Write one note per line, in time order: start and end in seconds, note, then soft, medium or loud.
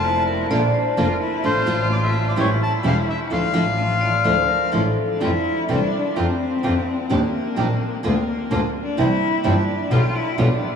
0.00 0.47 F1 medium
0.00 0.47 F3 medium
0.00 0.47 D4 medium
0.00 0.47 A#4 medium
0.00 0.25 C5 medium
0.00 0.23 A5 medium
0.04 0.52 E4 medium
0.27 0.51 A#4 medium
0.50 0.70 A#1 medium
0.50 0.59 D3 medium
0.50 0.59 A#3 medium
0.50 0.99 D4 medium
0.50 0.70 D4 medium
0.50 0.60 D4 medium
0.50 0.70 F4 medium
0.50 0.60 F4 medium
0.50 0.70 A#4 medium
0.50 0.72 D5 medium
0.74 0.96 C5 medium
0.97 1.16 F1 medium
0.97 1.06 D3 medium
0.97 1.06 A#3 medium
0.97 1.17 D4 medium
0.97 1.06 D4 medium
0.97 1.20 F4 medium
0.97 1.17 F4 medium
0.97 1.06 F4 medium
0.97 1.17 A#4 medium
0.97 1.30 A#4 medium
1.21 1.46 E4 medium
1.43 1.63 A1 medium
1.43 1.60 D3 medium
1.43 1.60 A3 medium
1.43 1.63 D4 medium
1.43 1.60 D4 medium
1.43 1.63 F4 soft
1.43 1.61 F4 medium
1.43 2.38 F4 medium
1.43 1.63 A4 medium
1.43 1.88 C5 medium
1.66 2.34 A1 medium
1.66 1.75 D3 medium
1.66 1.76 A3 medium
1.66 2.34 D4 medium
1.66 1.76 D4 loud
1.66 2.34 F4 medium
1.66 1.76 F4 loud
1.66 2.34 A4 medium
1.92 1.97 D5 medium
2.04 2.25 E5 medium
2.28 2.33 D5 medium
2.36 2.57 A1 medium
2.36 2.46 E3 medium
2.36 2.46 G3 medium
2.36 2.57 C#4 medium
2.36 2.46 C#4 medium
2.36 3.32 E4 medium
2.36 2.46 E4 medium
2.36 2.57 G4 medium
2.36 2.57 A4 medium
2.36 2.50 C#5 medium
2.63 2.73 A5 medium
2.83 3.04 E1 medium
2.83 2.93 E3 medium
2.83 2.93 G3 medium
2.83 2.93 C#4 medium
2.83 3.04 C#4 medium
2.83 2.93 E4 medium
2.83 3.04 G4 medium
2.83 3.04 A4 medium
2.83 2.97 F5 medium
3.10 3.20 E5 medium
3.30 3.51 D2 medium
3.30 3.47 D3 medium
3.30 3.48 F3 medium
3.30 3.48 A3 medium
3.30 3.79 D4 medium
3.30 3.51 D4 medium
3.30 3.48 D4 medium
3.30 3.51 E4 medium
3.30 3.48 E4 medium
3.30 3.51 F4 medium
3.30 4.70 F5 medium
3.53 4.22 A1 medium
3.53 3.63 D3 medium
3.53 3.63 F3 medium
3.53 3.63 A3 medium
3.53 3.63 D4 medium
3.53 4.22 D4 medium
3.53 3.63 E4 medium
3.53 4.22 F4 medium
3.77 4.27 F4 medium
3.77 4.00 E5 medium
4.01 4.26 D5 medium
4.24 4.46 D2 medium
4.24 4.34 D3 medium
4.24 4.34 F3 medium
4.24 4.34 A3 medium
4.24 4.45 D4 medium
4.24 4.34 D4 medium
4.24 4.98 D4 medium
4.24 4.34 E4 medium
4.24 4.46 E4 medium
4.24 4.46 F4 medium
4.24 4.35 C5 medium
4.48 4.74 A#4 medium
4.72 4.94 A1 medium
4.72 4.82 D3 medium
4.72 4.82 F3 medium
4.72 4.82 A3 medium
4.72 4.82 D4 medium
4.72 4.94 D4 medium
4.72 4.82 E4 medium
4.72 4.94 E4 medium
4.72 4.94 F4 medium
4.72 5.18 A4 medium
5.07 5.25 D4 medium
5.21 5.42 F2 medium
5.21 5.30 C3 medium
5.21 5.30 E3 medium
5.21 5.30 A3 medium
5.21 5.42 A3 medium
5.21 5.30 C4 medium
5.21 5.42 E4 medium
5.21 5.69 E4 medium
5.21 5.30 F4 medium
5.21 5.42 F4 medium
5.68 5.89 C2 medium
5.68 5.78 C3 medium
5.68 5.78 E3 medium
5.68 5.89 A3 medium
5.68 5.78 A3 medium
5.68 5.78 C4 medium
5.68 6.19 D4 medium
5.68 5.89 E4 medium
5.68 5.89 F4 medium
5.68 5.78 F4 medium
6.16 6.36 F2 medium
6.16 6.25 D3 medium
6.16 6.36 A#3 medium
6.16 6.25 C4 medium
6.16 6.36 C4 medium
6.16 7.13 C4 medium
6.16 6.36 D4 medium
6.16 6.26 F4 medium
6.63 6.84 F2 medium
6.63 6.72 D3 medium
6.63 6.83 A#3 medium
6.63 6.83 C4 medium
6.63 6.73 C4 medium
6.63 6.84 D4 medium
6.63 6.73 F4 medium
7.10 7.30 D#2 medium
7.10 7.19 D#3 medium
7.10 7.19 G3 medium
7.10 7.30 G3 medium
7.10 8.04 A#3 medium
7.10 7.20 D4 medium
7.10 7.30 D4 medium
7.10 7.30 D#4 medium
7.10 7.20 G4 medium
7.56 7.77 A#1 medium
7.56 7.66 D#3 medium
7.56 7.66 G3 medium
7.56 7.77 G3 medium
7.56 7.66 D4 medium
7.56 7.77 D4 medium
7.56 7.77 D#4 medium
7.56 7.66 G4 medium
8.03 8.24 D2 medium
8.03 8.13 D3 medium
8.03 8.13 A#3 medium
8.03 8.24 A#3 medium
8.03 8.71 A#3 medium
8.03 8.13 D4 medium
8.03 8.24 D4 medium
8.03 8.24 F4 medium
8.03 8.13 F4 medium
8.51 8.71 D2 medium
8.51 8.60 D3 medium
8.51 8.71 A#3 medium
8.51 8.60 A#3 medium
8.51 8.71 D4 medium
8.51 8.60 D4 medium
8.51 8.71 F4 medium
8.51 8.60 F4 medium
8.83 9.00 D4 medium
8.97 9.18 C2 medium
8.97 9.06 C3 medium
8.97 9.07 E3 medium
8.97 9.07 G3 medium
8.97 9.17 C4 medium
8.97 9.17 D4 medium
8.97 9.07 D4 medium
8.97 9.07 E4 medium
8.97 9.18 E4 medium
8.97 9.47 E4 loud
9.43 9.64 G1 medium
9.43 9.53 C3 medium
9.43 9.53 E3 medium
9.43 9.53 G3 medium
9.43 9.64 C4 medium
9.43 9.64 D4 medium
9.43 9.53 D4 medium
9.43 9.93 D4 medium
9.43 9.64 E4 medium
9.43 9.53 E4 medium
9.91 10.11 B1 medium
9.91 10.00 B2 medium
9.91 10.00 D3 medium
9.91 10.11 G3 medium
9.91 10.00 G3 medium
9.91 10.11 B3 medium
9.91 10.00 B3 medium
9.91 10.11 F4 medium
9.91 10.17 F4 medium
9.91 10.00 F4 medium
10.15 10.40 E4 medium
10.38 10.58 B1 medium
10.38 10.47 B2 medium
10.38 10.47 D3 medium
10.38 10.58 G3 medium
10.38 10.47 G3 medium
10.38 10.58 B3 medium
10.38 10.47 B3 medium
10.38 10.76 D4 loud
10.38 10.58 F4 medium
10.38 10.47 F4 medium
10.62 10.76 A#1 medium